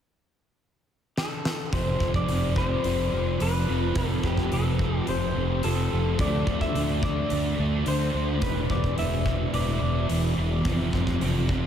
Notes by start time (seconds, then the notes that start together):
1.18 A4, snare
1.45 snare
1.73 F1 F2 C3 F3 C5, kick, open hi-hat
2.00 F1 C3 F3, kick
2.14 D5, kick
2.29 F1 F2 C3 F3, open hi-hat
2.56 C3 F3 C5, kick
2.84 F1 F2 C3 F3, open hi-hat
3.12 F1 C3 F3
3.40 F1 F2 C3 F3 B4, open hi-hat
3.68 F1 C3 F3
3.95 F1 F2 C3 F3 A4, kick, open hi-hat
4.23 F1 C3 F3 G4, kick
4.37 kick
4.51 F1 F2 C3 F3 A4, open hi-hat
4.79 C3 F3, kick
4.98 G4
5.07 F1 F2 C3 F3 C5, open hi-hat
5.35 F1 C3 F3
5.63 F1 F2 C3 F3 A4, open hi-hat
5.92 F1 C3 F3
6.19 D2 D3 A3 D4 D5, kick, open hi-hat
6.47 D2 A3 D4, kick
6.61 E5, kick
6.75 D2 D3 A3 D4, open hi-hat
7.03 A3 D4 D5, kick
7.30 D2 D3 A3 D4, open hi-hat
7.59 D2 A3 D4
7.86 D2 D3 A3 D4 C5, open hi-hat
8.14 D2 A3 D4
8.42 E1 E2 B2 E3 B4, kick, open hi-hat
8.70 E1 B2 E3 D5, kick
8.84 kick
8.98 E1 E2 B2 E3 E5, open hi-hat
9.26 B2 E3, kick
9.53 E1 E2 B2 E3 D5, open hi-hat
9.81 E1 B2 E3
10.09 E1 E2 B2 E3, open hi-hat
10.37 E1 B2 E3
10.65 F1 F2 C3 F3, kick, open hi-hat
10.93 F1 C3 F3, kick
11.07 kick
11.21 F1 F2 C3 F3, open hi-hat
11.49 C3 F3, kick